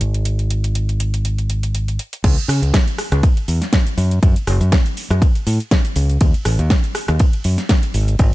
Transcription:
0.01 1.97 G#1 medium
0.01 closed hi-hat medium
0.14 closed hi-hat soft
0.25 closed hi-hat medium
0.39 closed hi-hat soft
0.51 closed hi-hat medium
0.64 closed hi-hat medium
0.75 closed hi-hat medium
0.89 closed hi-hat soft
1.00 closed hi-hat medium
1.14 closed hi-hat medium
1.25 closed hi-hat medium
1.38 closed hi-hat soft
1.50 closed hi-hat medium
1.63 closed hi-hat soft
1.75 closed hi-hat medium
1.88 closed hi-hat soft
1.99 closed hi-hat medium
2.13 closed hi-hat medium
2.24 2.35 C#2 loud
2.24 kick loud
2.24 closed hi-hat medium
2.24 ride medium
2.24 crash loud
2.24 shaker soft
2.38 closed hi-hat soft
2.38 shaker soft
2.48 2.60 C#3 medium
2.48 cross-stick medium
2.48 open hi-hat loud
2.48 shaker medium
2.62 2.72 C#2 loud
2.62 closed hi-hat soft
2.62 shaker soft
2.74 kick loud
2.74 snare loud
2.74 closed hi-hat medium
2.74 ride medium
2.74 shaker soft
2.88 closed hi-hat soft
2.88 shaker soft
2.98 cross-stick medium
2.98 open hi-hat medium
2.98 shaker medium
3.12 3.21 C#2 loud
3.12 cross-stick medium
3.12 closed hi-hat soft
3.12 shaker soft
3.23 kick loud
3.23 closed hi-hat medium
3.23 ride medium
3.23 shaker soft
3.37 closed hi-hat soft
3.48 3.59 E2 medium
3.48 open hi-hat loud
3.48 shaker medium
3.62 snare soft
3.62 closed hi-hat soft
3.62 shaker soft
3.73 kick loud
3.73 snare loud
3.73 closed hi-hat medium
3.73 ride medium
3.73 shaker soft
3.87 closed hi-hat soft
3.87 shaker soft
3.98 4.18 F#2 medium
3.98 open hi-hat medium
3.98 shaker medium
4.11 closed hi-hat soft
4.11 shaker soft
4.23 4.34 F#2 loud
4.23 kick loud
4.23 closed hi-hat medium
4.23 ride medium
4.23 shaker soft
4.36 closed hi-hat soft
4.36 shaker soft
4.47 4.58 F#1 loud
4.47 cross-stick medium
4.47 open hi-hat loud
4.47 shaker medium
4.61 4.70 F#2 loud
4.61 closed hi-hat soft
4.61 shaker soft
4.72 kick loud
4.72 snare loud
4.72 closed hi-hat medium
4.72 ride medium
4.72 shaker soft
4.86 closed hi-hat soft
4.86 shaker soft
4.97 open hi-hat medium
4.97 shaker medium
5.10 5.20 F#2 loud
5.10 cross-stick medium
5.10 closed hi-hat soft
5.10 shaker soft
5.22 kick loud
5.22 closed hi-hat medium
5.22 ride medium
5.22 shaker soft
5.35 closed hi-hat soft
5.35 shaker soft
5.47 5.58 A2 medium
5.47 open hi-hat loud
5.47 shaker medium
5.60 closed hi-hat soft
5.60 shaker soft
5.71 kick loud
5.71 snare loud
5.71 closed hi-hat medium
5.71 ride medium
5.71 shaker soft
5.85 closed hi-hat soft
5.85 shaker soft
5.96 6.17 C#2 medium
5.96 open hi-hat medium
5.96 shaker medium
6.10 closed hi-hat soft
6.10 shaker soft
6.21 6.32 D#2 loud
6.21 kick loud
6.21 closed hi-hat medium
6.21 ride medium
6.21 shaker soft
6.34 closed hi-hat soft
6.34 shaker soft
6.45 6.57 A1 loud
6.45 cross-stick medium
6.45 open hi-hat loud
6.45 shaker medium
6.59 6.68 D#2 loud
6.59 closed hi-hat soft
6.59 shaker soft
6.70 kick loud
6.70 snare loud
6.70 closed hi-hat medium
6.70 ride medium
6.70 shaker soft
6.84 closed hi-hat soft
6.84 shaker soft
6.95 cross-stick medium
6.95 open hi-hat loud
6.95 shaker medium
7.08 7.18 D#2 loud
7.08 cross-stick medium
7.08 closed hi-hat soft
7.08 shaker soft
7.19 kick loud
7.19 closed hi-hat medium
7.19 ride medium
7.19 shaker soft
7.33 closed hi-hat soft
7.44 7.56 F#2 medium
7.44 open hi-hat loud
7.44 shaker medium
7.58 snare soft
7.58 closed hi-hat soft
7.58 shaker soft
7.69 kick loud
7.69 snare loud
7.69 closed hi-hat medium
7.69 ride medium
7.69 shaker soft
7.83 closed hi-hat soft
7.83 shaker soft
7.94 8.15 G#1 medium
7.94 open hi-hat medium
7.94 shaker medium
8.08 closed hi-hat soft
8.08 shaker soft
8.19 8.30 G#1 medium
8.19 kick loud
8.19 closed hi-hat medium
8.19 ride medium
8.19 shaker soft

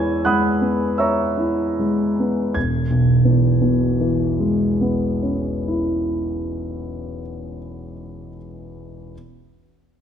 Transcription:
0.00 2.51 E2 soft
0.00 0.26 G#3 soft
0.00 0.61 B3 soft
0.00 1.38 E4 soft
0.00 0.11 C#5 soft
0.00 0.99 E5 soft
0.00 0.21 G#5 soft
0.00 0.99 A#5 soft
0.00 1.00 C#6 soft
0.00 0.98 E6 medium
0.00 0.24 G#6 medium
0.25 0.83 G#3 soft
0.25 0.94 F#5 soft
0.25 0.94 B5 soft
0.25 0.95 D#6 soft
0.25 0.98 F#6 medium
0.61 1.21 B3 soft
0.98 1.62 C#5 soft
0.98 1.75 E5 soft
0.98 1.75 A#5 soft
0.98 1.75 C#6 soft
0.98 1.78 E6 soft
1.38 2.03 E4 soft
1.79 2.42 G#3 soft
2.20 2.56 B3 soft
2.54 7.22 E1 soft
2.54 7.21 G#6 soft
2.90 7.56 B1 soft
3.25 7.91 E2 soft
3.61 8.28 B2 soft
4.00 8.37 E3 soft
4.40 8.37 G#3 soft
4.81 8.37 B3 soft
5.23 8.37 C#4 soft
5.68 8.37 E4 soft

